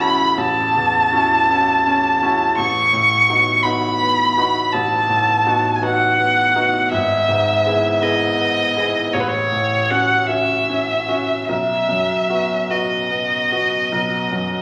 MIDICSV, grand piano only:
0, 0, Header, 1, 2, 480
1, 0, Start_track
1, 0, Tempo, 741656
1, 1205, Tempo, 713436
1, 1688, Time_signature, 12, 3, 24, 8
1, 2645, Tempo, 733496
1, 6005, Tempo, 775194
1, 6965, Tempo, 806452
1, 9305, End_track
2, 0, Start_track
2, 0, Title_t, "Grand piano"
2, 0, Program_c, 0, 0
2, 0, Control_c, 0, 64, 127
2, 0, Note_on_c, 0, 33, 40
2, 0, Note_on_c, 0, 40, 30
2, 0, Note_on_c, 0, 61, 32
2, 0, Note_on_c, 0, 64, 29
2, 0, Note_on_c, 0, 66, 34
2, 2, Note_off_c, 0, 64, 0
2, 2, Note_on_c, 0, 64, 30
2, 3, Note_off_c, 0, 66, 0
2, 3, Note_on_c, 0, 66, 33
2, 215, Note_off_c, 0, 61, 0
2, 217, Note_off_c, 0, 33, 0
2, 219, Note_off_c, 0, 64, 0
2, 219, Note_off_c, 0, 66, 0
2, 241, Note_on_c, 0, 33, 39
2, 485, Note_off_c, 0, 40, 0
2, 485, Note_on_c, 0, 40, 35
2, 725, Note_on_c, 0, 61, 32
2, 725, Note_on_c, 0, 64, 32
2, 731, Note_on_c, 0, 66, 35
2, 872, Note_off_c, 0, 40, 0
2, 943, Note_off_c, 0, 61, 0
2, 943, Note_off_c, 0, 64, 0
2, 946, Note_off_c, 0, 66, 0
2, 970, Note_on_c, 0, 61, 32
2, 972, Note_on_c, 0, 64, 32
2, 977, Note_on_c, 0, 66, 36
2, 1183, Note_off_c, 0, 61, 0
2, 1184, Note_off_c, 0, 64, 0
2, 1187, Note_off_c, 0, 66, 0
2, 1208, Note_on_c, 0, 61, 36
2, 1438, Note_off_c, 0, 61, 0
2, 1448, Note_on_c, 0, 61, 34
2, 1450, Note_on_c, 0, 64, 34
2, 1451, Note_on_c, 0, 66, 36
2, 1659, Note_off_c, 0, 33, 0
2, 1664, Note_off_c, 0, 61, 0
2, 1665, Note_off_c, 0, 64, 0
2, 1666, Note_off_c, 0, 66, 0
2, 1687, Note_on_c, 0, 33, 44
2, 1699, Control_c, 0, 64, 0
2, 1805, Control_c, 0, 64, 127
2, 1923, Note_on_c, 0, 45, 35
2, 2167, Note_on_c, 0, 59, 31
2, 2168, Note_on_c, 0, 63, 29
2, 2170, Note_on_c, 0, 66, 34
2, 2305, Note_off_c, 0, 45, 0
2, 2381, Note_off_c, 0, 59, 0
2, 2382, Note_off_c, 0, 63, 0
2, 2383, Note_off_c, 0, 66, 0
2, 2405, Note_on_c, 0, 59, 31
2, 2406, Note_on_c, 0, 63, 32
2, 2409, Note_on_c, 0, 66, 37
2, 2623, Note_off_c, 0, 59, 0
2, 2624, Note_off_c, 0, 63, 0
2, 2625, Note_off_c, 0, 66, 0
2, 2650, Note_on_c, 0, 59, 34
2, 2875, Note_off_c, 0, 59, 0
2, 2885, Note_on_c, 0, 59, 34
2, 2888, Note_on_c, 0, 63, 33
2, 2890, Note_on_c, 0, 66, 36
2, 3098, Note_off_c, 0, 33, 0
2, 3100, Note_off_c, 0, 59, 0
2, 3102, Note_off_c, 0, 63, 0
2, 3103, Note_off_c, 0, 66, 0
2, 3127, Note_on_c, 0, 33, 42
2, 3359, Note_on_c, 0, 45, 36
2, 3598, Note_on_c, 0, 59, 33
2, 3602, Note_on_c, 0, 63, 33
2, 3602, Note_on_c, 0, 66, 38
2, 3744, Note_off_c, 0, 45, 0
2, 3815, Note_off_c, 0, 59, 0
2, 3817, Note_off_c, 0, 63, 0
2, 3818, Note_off_c, 0, 66, 0
2, 3833, Note_on_c, 0, 59, 35
2, 3836, Note_on_c, 0, 63, 34
2, 3836, Note_on_c, 0, 66, 37
2, 4052, Note_off_c, 0, 59, 0
2, 4054, Note_off_c, 0, 63, 0
2, 4054, Note_off_c, 0, 66, 0
2, 4075, Note_on_c, 0, 59, 34
2, 4303, Note_off_c, 0, 59, 0
2, 4313, Note_on_c, 0, 59, 36
2, 4317, Note_on_c, 0, 63, 33
2, 4317, Note_on_c, 0, 66, 38
2, 4530, Note_off_c, 0, 59, 0
2, 4533, Note_off_c, 0, 33, 0
2, 4533, Note_off_c, 0, 63, 0
2, 4533, Note_off_c, 0, 66, 0
2, 4555, Note_on_c, 0, 32, 46
2, 4570, Control_c, 0, 64, 0
2, 4659, Control_c, 0, 64, 127
2, 4794, Note_on_c, 0, 44, 37
2, 5036, Note_on_c, 0, 59, 31
2, 5036, Note_on_c, 0, 64, 31
2, 5040, Note_on_c, 0, 68, 34
2, 5177, Note_off_c, 0, 44, 0
2, 5250, Note_off_c, 0, 64, 0
2, 5251, Note_off_c, 0, 59, 0
2, 5253, Note_off_c, 0, 68, 0
2, 5269, Note_on_c, 0, 59, 34
2, 5274, Note_on_c, 0, 64, 33
2, 5279, Note_on_c, 0, 68, 35
2, 5488, Note_off_c, 0, 59, 0
2, 5490, Note_off_c, 0, 64, 0
2, 5493, Note_off_c, 0, 68, 0
2, 5516, Note_on_c, 0, 59, 36
2, 5752, Note_off_c, 0, 59, 0
2, 5762, Note_on_c, 0, 59, 30
2, 5762, Note_on_c, 0, 64, 29
2, 5764, Note_on_c, 0, 68, 33
2, 5977, Note_off_c, 0, 32, 0
2, 5982, Note_off_c, 0, 59, 0
2, 5983, Note_off_c, 0, 64, 0
2, 5983, Note_off_c, 0, 68, 0
2, 6007, Note_on_c, 0, 33, 46
2, 6017, Control_c, 0, 64, 0
2, 6109, Control_c, 0, 64, 127
2, 6241, Note_on_c, 0, 45, 33
2, 6482, Note_on_c, 0, 61, 32
2, 6484, Note_on_c, 0, 66, 34
2, 6624, Note_off_c, 0, 45, 0
2, 6699, Note_off_c, 0, 61, 0
2, 6700, Note_off_c, 0, 66, 0
2, 6715, Note_on_c, 0, 61, 32
2, 6717, Note_on_c, 0, 66, 33
2, 6937, Note_off_c, 0, 61, 0
2, 6938, Note_off_c, 0, 66, 0
2, 6969, Note_on_c, 0, 61, 33
2, 7193, Note_off_c, 0, 61, 0
2, 7202, Note_on_c, 0, 61, 31
2, 7204, Note_on_c, 0, 66, 35
2, 7416, Note_off_c, 0, 61, 0
2, 7417, Note_off_c, 0, 33, 0
2, 7417, Note_off_c, 0, 66, 0
2, 7442, Note_on_c, 0, 35, 37
2, 7449, Control_c, 0, 64, 0
2, 7567, Control_c, 0, 64, 127
2, 7680, Note_on_c, 0, 42, 31
2, 7922, Note_on_c, 0, 59, 28
2, 7925, Note_on_c, 0, 66, 32
2, 8065, Note_off_c, 0, 42, 0
2, 8138, Note_off_c, 0, 59, 0
2, 8139, Note_off_c, 0, 66, 0
2, 8160, Note_on_c, 0, 59, 29
2, 8166, Note_on_c, 0, 66, 33
2, 8378, Note_off_c, 0, 59, 0
2, 8381, Note_off_c, 0, 66, 0
2, 8408, Note_on_c, 0, 59, 31
2, 8644, Note_off_c, 0, 59, 0
2, 8652, Note_on_c, 0, 66, 30
2, 8653, Note_on_c, 0, 59, 29
2, 8865, Note_off_c, 0, 35, 0
2, 8867, Note_off_c, 0, 66, 0
2, 8868, Note_off_c, 0, 59, 0
2, 8891, Note_on_c, 0, 35, 34
2, 9128, Note_on_c, 0, 42, 29
2, 9305, Note_off_c, 0, 35, 0
2, 9305, Note_off_c, 0, 42, 0
2, 9305, End_track
0, 0, End_of_file